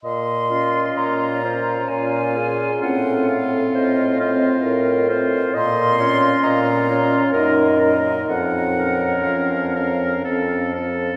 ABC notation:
X:1
M:3/4
L:1/8
Q:1/4=65
K:Bbm
V:1 name="Flute"
c'2 b2 a2 | g f e3 z | c'2 b2 e2 | g2 f3 z |]
V:2 name="Clarinet"
e2 d c d A | =A2 c c B c | e d e d B z | d4- d z |]
V:3 name="Oboe"
z F2 F2 F | F F2 F2 F | z F2 F B B | z B2 B =A A |]
V:4 name="French horn"
z D2 D2 D | C C2 C2 C | z D2 D E E | z D2 D C C |]
V:5 name="Bassoon" clef=bass
B,,2 B,,2 B,,2 | =A,,2 A,,2 A,,2 | B,,2 B,,2 G,,2 | F,,2 F,,2 F,,2 |]